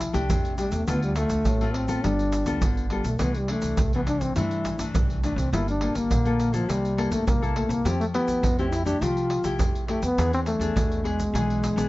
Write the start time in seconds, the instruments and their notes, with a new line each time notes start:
Already playing: nylon-string guitar F3, trombone E4
0.01 pandeiro, shaker, surdo
0.13 upright bass C2, nylon-string guitar A3 D4 G4, pandeiro, shaker, surdo
0.29 upright bass F2, nylon-string guitar C3, pandeiro, shaker, surdo
0.45 pandeiro, shaker
0.58 trombone G3, nylon-string guitar A3 D4 G4, pandeiro, shaker
0.72 upright bass E2, trombone A3, pandeiro, shaker, surdo
0.87 upright bass D2, nylon-string guitar D3 A3 C4 F4, trombone B3, pandeiro, shaker, surdo
1.02 trombone G3, pandeiro, shaker
1.16 nylon-string guitar A3 C4 F4, trombone A3, pandeiro, shaker
1.30 upright bass D2, pandeiro, shaker, surdo
1.45 upright bass A1, nylon-string guitar A2, pandeiro, shaker, surdo
1.61 nylon-string guitar A3 C4 F4, pandeiro, shaker
1.74 trombone C4, pandeiro
1.88 nylon-string guitar B3 F4 A4, pandeiro, shaker, surdo
2.04 upright bass G1, nylon-string guitar G3, trombone D4, pandeiro, shaker, surdo
2.19 pandeiro, shaker
2.32 pandeiro, shaker
2.46 upright bass D2, nylon-string guitar B3 F4 A4, pandeiro, shaker, surdo
2.62 upright bass G1, nylon-string guitar D3, pandeiro, shaker, surdo
2.77 pandeiro, shaker
2.90 trombone G3, nylon-string guitar B3 F4 A4, pandeiro
3.04 upright bass B1, trombone A3, pandeiro, shaker, surdo
3.19 upright bass C2, nylon-string guitar C3 E3 A3 D4, trombone B3, pandeiro, shaker, surdo
3.35 trombone G3, pandeiro, shaker
3.48 nylon-string guitar E3 A3 D4, trombone A3, pandeiro
3.62 upright bass C2, pandeiro, shaker, surdo
3.77 upright bass C2, nylon-string guitar G2, pandeiro, shaker, surdo
3.93 nylon-string guitar E3 A3 D4, trombone B3, pandeiro, shaker
4.07 trombone D4, pandeiro, shaker
4.21 trombone C4, pandeiro, shaker, surdo
4.36 upright bass G2, nylon-string guitar C3 E3 A3 D4, trombone E4, pandeiro, shaker, surdo
4.51 pandeiro, shaker
4.65 pandeiro, shaker, surdo
4.79 upright bass G2, nylon-string guitar E3 A3 D4, pandeiro, shaker, surdo
4.94 upright bass C2, nylon-string guitar G2, pandeiro, shaker, surdo
5.10 pandeiro, shaker
5.23 nylon-string guitar E3 A3 D4, trombone D4, pandeiro, shaker
5.36 upright bass C2, trombone C4, pandeiro, shaker, surdo
5.52 upright bass G1, nylon-string guitar G3 A#3 F4 A4, trombone E4, pandeiro, shaker, surdo
5.68 trombone D4, pandeiro, shaker
5.81 nylon-string guitar A#3 F4 A4, pandeiro
5.95 upright bass G1, trombone A#3, pandeiro, shaker, surdo
6.10 upright bass A#1, nylon-string guitar D3, pandeiro, shaker, surdo
6.25 nylon-string guitar A#3 F4 A4, pandeiro, shaker
6.40 pandeiro, shaker
6.53 trombone F3, nylon-string guitar A#3 E4 A4, pandeiro, shaker, surdo
6.69 upright bass C2, nylon-string guitar C3, trombone G3, pandeiro, shaker, surdo
6.85 pandeiro, shaker
6.97 nylon-string guitar A#3 E4 A4, pandeiro
7.11 upright bass G2, trombone A3, pandeiro, shaker, surdo
7.27 upright bass C2, nylon-string guitar G2, trombone A#3, pandeiro, shaker, surdo
7.42 nylon-string guitar A#3 E4 A4, pandeiro, shaker
7.56 trombone A3, pandeiro
7.68 upright bass C2, trombone A#3 C4, pandeiro, shaker, surdo
7.85 upright bass F2, nylon-string guitar F3 A3 E4 G4, trombone C4, pandeiro, shaker, surdo
8.00 trombone A3, pandeiro, shaker
8.14 nylon-string guitar A3 E4 G4, trombone B3, pandeiro
8.28 upright bass F2, pandeiro, shaker, surdo
8.43 upright bass F2, nylon-string guitar C3, pandeiro, shaker, surdo
8.58 nylon-string guitar A3 E4 G4, trombone C4, pandeiro, shaker
8.72 trombone E4, pandeiro, shaker
8.85 nylon-string guitar A3 E4 G4, trombone D4, pandeiro, shaker, surdo
9.01 upright bass C2, nylon-string guitar F3 A3 G4, trombone F4, pandeiro, shaker, surdo
9.17 pandeiro, shaker
9.30 pandeiro
9.44 upright bass C2, nylon-string guitar A3 E4 G4, pandeiro, shaker, surdo
9.59 upright bass F2, nylon-string guitar C3, pandeiro, shaker, surdo
9.75 pandeiro, shaker
9.88 nylon-string guitar A3 E4 G4, trombone A3, pandeiro
10.02 upright bass F2, trombone B3, pandeiro, shaker, surdo
10.18 upright bass E2, nylon-string guitar E3 B3 D4 G#4, pandeiro, shaker, surdo
10.33 trombone C4, pandeiro, shaker
10.46 trombone A3, pandeiro, shaker
10.60 upright bass E2, nylon-string guitar B3 D4 G#4, pandeiro, shaker, surdo
10.76 upright bass E2, nylon-string guitar B2, pandeiro, shaker, surdo
10.92 pandeiro, shaker
11.04 trombone G#3, nylon-string guitar B3 D4 G#4, pandeiro
11.20 pandeiro, shaker, surdo
11.34 upright bass B1, nylon-string guitar E3 B3 D4 G#4, pandeiro, shaker, surdo
11.50 pandeiro, shaker
11.64 pandeiro, shaker
11.76 upright bass B1, nylon-string guitar B3 D4 G#4, pandeiro, shaker, surdo